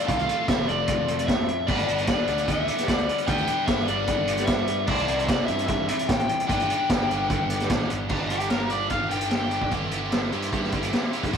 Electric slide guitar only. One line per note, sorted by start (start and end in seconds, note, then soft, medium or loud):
0.07 0.48 F5 loud
0.49 0.69 E5 medium
0.68 1.29 D5 loud
1.27 1.64 E5 loud
1.67 2.06 D5 medium
2.07 2.49 D5 medium
2.48 2.88 E5 medium
2.88 3.29 D5 loud
3.27 3.69 G5 medium
3.66 3.88 E5 medium
3.87 4.50 D5 loud
4.45 4.84 E5 loud
4.87 5.26 D5 medium
5.27 5.46 D5 loud
5.46 5.67 E5 loud
5.68 5.87 E5 loud
5.88 6.09 E5 medium
6.08 6.46 G5 loud
6.47 7.85 G5 loud
8.31 8.50 G4 medium
8.52 8.71 A#4 medium
8.70 8.90 D5 medium
8.90 9.10 F5 medium
9.11 9.30 G5 medium
9.31 9.70 G5 medium